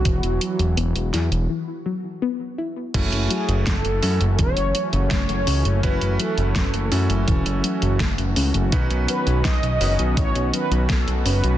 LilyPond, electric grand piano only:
\new Staff \with { instrumentName = "Electric grand piano" } { \time 4/4 \key fis \dorian \tempo 4 = 83 r1 | <a cis' e' fis'>4. <cis' e' fis' a'>8 r2 | <cis' e' fis' b'>4. <cis' e' fis' a'>2~ <cis' e' fis' a'>8 | <cis' dis' fis' b'>4. <cis' dis' fis' b'>8 r2 | }